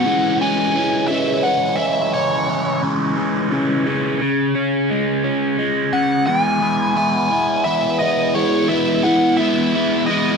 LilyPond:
<<
  \new Staff \with { instrumentName = "Lead electric guitar" } { \time 6/8 \key e \major \tempo 4. = 58 fis''8 gis''4 e''8 fis''8 e''8 | cis''4 r2 | r2 r8 fis''8 | gis''4 gis''4 e''8 dis''8 |
cis''8 e''8 fis''8 e''4 dis''8 | }
  \new Staff \with { instrumentName = "Overdriven electric guitar" } { \clef bass \time 6/8 \key e \major <cis e gis cis'>8 <cis e gis cis'>8 <cis e gis cis'>8 <cis e gis cis'>8 <cis e gis cis'>8 <cis e gis cis'>8 | <cis e gis cis'>8 <cis e gis cis'>8 <cis e gis cis'>8 <cis e gis cis'>8 <cis e gis cis'>8 <cis e gis cis'>8 | cis8 cis'8 gis8 cis'8 gis8 cis8 | <e gis b e'>8 <e gis b e'>8 <e gis b e'>8 <e gis b e'>8 <e gis b e'>8 <e gis b e'>8 |
<e gis b e'>8 <e gis b e'>8 <e gis b e'>8 <e gis b e'>8 <e gis b e'>8 <e gis b e'>8 | }
>>